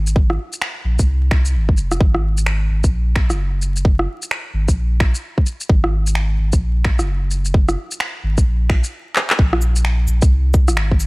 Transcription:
Already playing: sub bass G#1
0.07 shaker
0.16 kick
0.30 cross-stick
0.53 shaker
0.62 finger snap
0.85 sub bass A#1
0.99 sub bass C2, kick, shaker
1.31 finger snap, kick, cross-stick
1.45 shaker
1.54 sub bass G#1
1.69 kick
1.77 sub bass F1, shaker
1.92 cross-stick, shaker
2.00 sub bass G#1, kick
2.15 cross-stick
2.38 shaker
2.46 finger snap
2.70 sub bass G#1
2.84 sub bass A#1, kick, shaker
3.16 finger snap, kick
3.30 sub bass F#1, cross-stick, shaker
3.62 shaker
3.76 shaker
3.85 kick
3.99 cross-stick
4.22 shaker
4.31 finger snap
4.54 sub bass G#1
4.69 sub bass A#1, kick, shaker
5.00 finger snap, kick, cross-stick
5.15 shaker
5.38 kick
5.46 shaker
5.61 shaker
5.69 sub bass G#1, kick
5.84 cross-stick
6.07 shaker
6.15 finger snap
6.39 sub bass G#1
6.53 sub bass A#1, kick, shaker
6.84 finger snap, kick
6.99 sub bass F#1, cross-stick, shaker
7.31 shaker
7.45 shaker
7.54 kick
7.69 cross-stick, shaker
7.92 shaker
8.00 finger snap
8.24 sub bass G#1
8.38 sub bass A#1, kick, shaker
8.70 finger snap, kick, cross-stick
8.84 shaker
9.16 clap
9.30 clap
9.39 sub bass A#1, kick
9.53 cross-stick
9.62 cabasa
9.76 shaker
9.85 finger snap
10.08 sub bass A#1, cabasa
10.22 sub bass C2, kick, shaker
10.54 kick, cabasa
10.68 sub bass G#1, cross-stick, shaker
10.77 finger snap
10.91 kick
11.00 cabasa, shaker

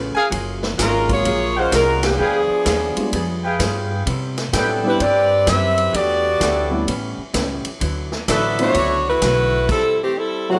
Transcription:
Already playing: upright bass A1, hollow-body jazz guitar C#3 A3 B3 F4, saxophone section B4
0.15 trumpet section G#4 A#4 F5 G#5, muted upright bass stroke
0.30 upright bass F#1, hollow-body jazz guitar F#3 A#3 F4 G#4, kick, ride
0.63 snare
0.78 upright bass G#1, hollow-body jazz guitar F#3 A#3 F4 G#4, kick, snare, hi-hat pedal, ride
0.82 saxophone section G#3 C#4 F4 A#4
1.08 grand piano F#3 G#3 A#3 C#4 F4, kick, ride
1.13 saxophone section A#3 F4 G#4 C#5
1.25 upright bass A#1, hollow-body jazz guitar F#3 A#3 F4 G#4, kick, ride
1.56 saxophone section G#3 C#4 F4 C5, trumpet section G#4 A#4 F5 F#5
1.72 upright bass C2, hollow-body jazz guitar F#3 A#3 F4 G#4, saxophone section G#3 C#4 F4 A#4, kick, snare, hi-hat pedal, ride
2.03 saxophone section F3 B3 D4 G#4, snare, ride
2.18 upright bass D2, hollow-body jazz guitar G3 B3 F4 G#4, trumpet section G#4 B4 F5 G5
2.50 muted upright bass stroke
2.65 upright bass D#2, hollow-body jazz guitar G3 B3 F4 G#4, kick, snare, hi-hat pedal, ride
2.96 grand piano G3 G#3 B3 D4 F4, muted upright bass stroke, ride
3.13 upright bass F2, hollow-body jazz guitar G3 B3 F4 G#4, kick, ride
3.43 trumpet section G#4 B4 F5 G5
3.59 upright bass G2, hollow-body jazz guitar G3 B3 F4 G#4, kick, snare, hi-hat pedal, ride
4.06 hollow-body jazz guitar C3 G3 B3 E4, upright bass C3, kick, ride
4.38 snare, ride
4.53 upright bass A2, hollow-body jazz guitar C3 G3 B3 E4, saxophone section F#3 B3 D4 A4, trumpet section B4 E5 G5, kick, snare, hi-hat pedal, ride
4.83 grand piano G3 B3 C4 D4 E4
4.88 saxophone section G3 C4 E4 B4
5.00 upright bass G2, hollow-body jazz guitar C3 G3 B3 E4, saxophone section C4 G4 B4 D5, kick, ride
5.46 upright bass F#2, hollow-body jazz guitar C3 G3 B3 E4, saxophone section C4 G4 B4 E5, kick, snare, hi-hat pedal, ride
5.78 ride
5.92 upright bass E2, hollow-body jazz guitar E3 A3 D4 G4, saxophone section B3 F#4 G4 D5, kick, ride
6.40 upright bass D2, hollow-body jazz guitar E3 A3 D4 G4, trumpet section E4 A4 D5 F#5, kick, snare, hi-hat pedal, ride
6.71 grand piano G3 A3 B3 C#4 E4
6.87 upright bass A1, hollow-body jazz guitar A2 G3 B3 C#4, kick, ride
7.18 muted upright bass stroke
7.34 upright bass C#2, hollow-body jazz guitar A2 G3 B3 C#4, kick, snare, hi-hat pedal, ride
7.65 muted upright bass stroke, ride
7.80 upright bass D2, hollow-body jazz guitar D3 F#3 B3 E4, kick, ride
8.12 snare
8.28 upright bass A1, hollow-body jazz guitar D3 F#3 B3 E4, saxophone section F#3 B3 E4 A4, trumpet section D4 F#4 B4 E5, kick, snare, hi-hat pedal, ride
8.58 grand piano F#3 A3 B3 D4 E4, saxophone section A3 D4 F#4 C#5, ride
8.74 upright bass C#2, hollow-body jazz guitar D3 F#3 B3 E4, kick, ride
9.08 saxophone section A3 E4 F#4 B4
9.22 upright bass B1, hollow-body jazz guitar D3 F#3 B3 E4, kick, snare, hi-hat pedal, ride
9.69 saxophone section G3 C4 E4 A4, kick, crash
10.03 saxophone section E3 A3 C4 G4
10.18 saxophone section G3 C4 E4 A4
10.49 trombone section A2 C3 F#3, saxophone section E3 A3 C4 F#4

